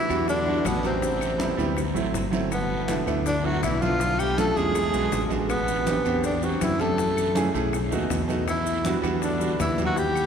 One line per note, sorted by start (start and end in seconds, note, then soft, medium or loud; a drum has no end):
0.00 0.25 E3 medium
0.00 0.25 E4 loud
0.08 0.62 E2 medium
0.08 0.35 G3 medium
0.08 0.35 B3 medium
0.08 0.36 D4 medium
0.08 0.36 F#4 loud
0.08 high conga soft
0.08 short guiro medium
0.08 claves medium
0.08 maracas soft
0.28 0.67 D3 medium
0.28 0.68 D4 medium
0.28 high bongo medium
0.28 high conga soft
0.28 long guiro medium
0.28 maracas medium
0.45 0.72 G3 medium
0.45 0.72 B3 medium
0.45 0.73 D4 medium
0.45 0.73 F#4 medium
0.45 high bongo soft
0.45 high conga soft
0.65 1.53 A1 medium
0.65 0.84 B2 medium
0.65 0.85 B3 medium
0.65 high bongo medium
0.65 low bongo medium
0.65 high conga medium
0.65 short guiro medium
0.65 claves medium
0.65 maracas medium
0.83 1.92 C3 medium
0.83 1.02 G3 medium
0.83 1.02 B3 medium
0.83 1.93 C4 medium
0.83 1.02 D4 medium
0.83 1.03 F#4 medium
0.83 high bongo soft
0.83 high conga medium
0.83 short guiro medium
0.83 maracas soft
1.02 high bongo medium
1.02 high conga soft
1.02 long guiro medium
1.02 maracas medium
1.21 high bongo soft
1.21 high conga soft
1.21 claves medium
1.21 maracas medium
1.38 1.52 G3 medium
1.38 1.52 B3 medium
1.38 1.53 C4 medium
1.38 1.53 E4 medium
1.38 high bongo soft
1.38 high conga loud
1.38 short guiro medium
1.38 maracas medium
1.57 1.93 D2 medium
1.57 1.77 G3 loud
1.57 1.77 B3 medium
1.57 1.77 C4 medium
1.57 1.77 E4 loud
1.57 high bongo soft
1.57 high conga soft
1.57 short guiro medium
1.57 maracas soft
1.77 high bongo medium
1.77 high conga soft
1.77 long guiro medium
1.77 claves medium
1.77 maracas medium
1.94 2.13 A1 medium
1.94 2.21 F#3 medium
1.94 2.21 A3 medium
1.94 2.22 C4 medium
1.94 2.22 E4 loud
1.94 high conga soft
1.94 maracas medium
2.14 3.02 G1 medium
2.14 high bongo medium
2.14 low bongo medium
2.14 high conga soft
2.14 short guiro medium
2.14 maracas medium
2.31 2.51 F#3 medium
2.31 2.51 A3 medium
2.31 2.51 C4 medium
2.31 2.51 E4 medium
2.31 high bongo soft
2.31 high conga medium
2.31 short guiro medium
2.31 maracas soft
2.52 3.04 B2 medium
2.52 3.04 B3 medium
2.52 high bongo medium
2.52 high conga soft
2.52 long guiro medium
2.52 claves medium
2.52 maracas medium
2.70 high bongo soft
2.70 high conga soft
2.88 3.01 A3 medium
2.88 3.01 B3 medium
2.88 3.02 D4 medium
2.88 3.02 E4 medium
2.88 high bongo soft
2.88 high conga medium
2.88 short guiro medium
2.88 maracas medium
3.06 3.59 D2 medium
3.06 3.33 A3 medium
3.06 3.33 B3 medium
3.06 3.34 D4 medium
3.06 3.34 E4 loud
3.06 high conga soft
3.06 short guiro medium
3.06 claves medium
3.06 maracas soft
3.26 3.46 D3 medium
3.26 3.47 D4 medium
3.26 high bongo medium
3.26 high conga soft
3.26 long guiro medium
3.26 maracas medium
3.44 3.63 F#3 medium
3.44 3.71 A3 medium
3.44 3.71 B3 medium
3.44 3.71 D4 medium
3.44 3.71 E4 medium
3.44 3.63 F#4 medium
3.44 high bongo soft
3.44 high conga soft
3.63 4.51 B1 medium
3.63 3.83 E3 medium
3.63 3.84 E4 medium
3.63 high bongo medium
3.63 low bongo medium
3.63 high conga medium
3.63 short guiro medium
3.63 claves medium
3.63 maracas medium
3.81 4.21 F3 medium
3.81 4.00 A3 medium
3.81 4.00 B3 medium
3.81 4.01 D4 medium
3.81 4.01 E4 medium
3.81 4.21 F4 loud
3.81 high bongo soft
3.81 high conga medium
3.81 short guiro medium
3.81 maracas soft
4.00 high bongo medium
4.00 high conga soft
4.00 long guiro medium
4.00 maracas medium
4.19 4.40 G3 medium
4.19 4.40 G4 medium
4.19 high bongo soft
4.19 high conga soft
4.19 claves medium
4.19 maracas medium
4.37 4.51 A3 medium
4.37 4.57 A3 medium
4.37 4.51 C#4 medium
4.37 4.51 D4 medium
4.37 4.51 F4 medium
4.37 4.58 A4 medium
4.37 high bongo medium
4.37 high conga medium
4.37 short guiro medium
4.37 maracas medium
4.56 4.91 E2 medium
4.56 5.31 G#3 medium
4.56 4.75 A3 medium
4.56 4.75 C#4 medium
4.56 4.75 D4 medium
4.56 4.76 F4 medium
4.56 5.31 G#4 medium
4.56 high bongo soft
4.56 high conga soft
4.56 short guiro medium
4.56 maracas soft
4.75 high bongo medium
4.75 high conga soft
4.75 long guiro medium
4.75 claves medium
4.75 maracas medium
4.93 5.11 B1 medium
4.93 5.20 G#3 medium
4.93 5.20 B3 medium
4.93 5.20 D4 medium
4.93 5.20 F#4 medium
4.93 high conga soft
4.93 maracas medium
5.12 6.00 A1 medium
5.12 high bongo medium
5.12 low bongo medium
5.12 high conga soft
5.12 short guiro medium
5.12 maracas medium
5.29 5.49 G#3 medium
5.29 5.49 B3 medium
5.29 5.49 D4 medium
5.29 5.50 F#4 medium
5.29 high bongo soft
5.29 high conga medium
5.29 short guiro medium
5.29 maracas soft
5.49 6.20 B2 medium
5.49 6.20 B3 medium
5.49 high bongo medium
5.49 high conga soft
5.49 long guiro medium
5.49 claves medium
5.49 maracas medium
5.68 high bongo soft
5.68 high conga soft
5.68 maracas medium
5.86 6.00 B3 medium
5.86 6.00 C4 medium
5.86 6.00 D4 medium
5.86 6.00 G4 medium
5.86 high bongo soft
5.86 high conga loud
5.86 short guiro medium
5.86 maracas medium
6.05 6.58 E2 medium
6.05 6.32 B3 loud
6.05 6.32 C4 medium
6.05 6.32 D4 medium
6.05 6.32 G4 loud
6.05 high conga soft
6.05 short guiro medium
6.05 claves medium
6.05 maracas soft
6.24 6.44 D3 medium
6.24 6.45 D4 medium
6.24 high bongo medium
6.24 high conga soft
6.24 long guiro medium
6.24 maracas medium
6.42 6.61 F#3 medium
6.42 6.69 B3 medium
6.42 6.69 C4 medium
6.42 6.69 D4 medium
6.42 6.62 F#4 medium
6.42 6.69 G4 medium
6.42 high bongo soft
6.42 high conga soft
6.42 maracas medium
6.61 7.49 F#2 medium
6.61 6.81 E3 medium
6.61 6.82 E4 medium
6.61 high bongo medium
6.61 low bongo medium
6.61 high conga medium
6.61 short guiro medium
6.61 claves medium
6.61 maracas medium
6.78 7.36 A3 medium
6.78 6.98 B3 medium
6.78 6.98 C4 medium
6.78 6.99 D4 medium
6.78 6.99 G4 medium
6.78 7.36 A4 medium
6.78 high bongo soft
6.78 high conga medium
6.78 short guiro medium
6.78 maracas soft
6.98 high bongo medium
6.98 high conga soft
6.98 long guiro medium
6.98 maracas medium
7.16 high bongo soft
7.16 high conga soft
7.16 claves medium
7.16 maracas medium
7.35 7.49 A3 medium
7.35 7.49 C#4 medium
7.35 7.49 E4 medium
7.35 7.50 G#4 loud
7.35 high bongo soft
7.35 high conga loud
7.35 short guiro medium
7.35 maracas medium
7.54 7.90 B1 medium
7.54 7.73 A3 medium
7.54 7.74 C#4 medium
7.54 7.74 E4 medium
7.54 7.74 G#4 medium
7.54 high bongo soft
7.54 high conga soft
7.54 short guiro medium
7.54 maracas soft
7.73 high bongo medium
7.73 high conga soft
7.73 long guiro medium
7.73 claves medium
7.73 maracas medium
7.91 8.10 D#2 medium
7.91 8.18 A3 medium
7.91 8.18 B3 medium
7.91 8.18 D#4 medium
7.91 8.18 F#4 loud
7.91 high conga soft
7.91 maracas soft
8.10 8.98 E2 medium
8.10 high bongo medium
8.10 low bongo medium
8.10 high conga soft
8.10 short guiro medium
8.10 maracas medium
8.28 8.47 A3 medium
8.28 8.48 B3 medium
8.28 8.48 D#4 medium
8.28 8.48 F#4 medium
8.28 high bongo soft
8.28 high conga medium
8.28 short guiro medium
8.28 maracas soft
8.47 9.00 E3 medium
8.47 9.00 E4 medium
8.47 high bongo medium
8.47 high conga soft
8.47 long guiro medium
8.47 claves medium
8.47 maracas medium
8.66 high bongo soft
8.66 high conga soft
8.66 maracas medium
8.84 8.98 G3 medium
8.84 8.98 B3 medium
8.84 8.98 D4 medium
8.84 8.99 F#4 medium
8.84 high bongo soft
8.84 high conga loud
8.84 short guiro medium
8.84 maracas medium
9.02 9.56 E2 medium
9.02 9.29 G3 loud
9.02 9.30 B3 medium
9.02 9.30 D4 medium
9.02 9.30 F#4 loud
9.02 high conga soft
9.02 short guiro medium
9.02 claves medium
9.02 maracas soft
9.22 9.57 D3 medium
9.22 9.58 D4 medium
9.22 high bongo medium
9.22 high conga soft
9.22 long guiro medium
9.22 maracas medium
9.39 9.66 G3 medium
9.39 9.67 B3 medium
9.39 9.67 D4 medium
9.39 9.67 F#4 medium
9.39 high bongo soft
9.39 high conga soft
9.39 maracas medium
9.59 10.26 D#2 medium
9.59 9.83 E3 medium
9.59 9.84 E4 medium
9.59 high bongo medium
9.59 low bongo medium
9.59 high conga medium
9.59 short guiro medium
9.59 claves medium
9.59 maracas medium
9.78 9.97 G3 medium
9.78 9.97 B3 medium
9.78 9.97 D4 medium
9.78 9.98 F#4 medium
9.78 high bongo soft
9.78 high conga medium
9.78 short guiro medium
9.78 maracas soft
9.84 9.99 F#3 medium
9.84 10.00 F#4 medium
9.96 10.26 G3 medium
9.96 10.26 G4 loud
9.96 high bongo medium
9.96 high conga soft
9.96 long guiro medium
9.96 maracas medium
10.15 high bongo soft
10.15 high conga soft
10.15 claves medium
10.15 maracas soft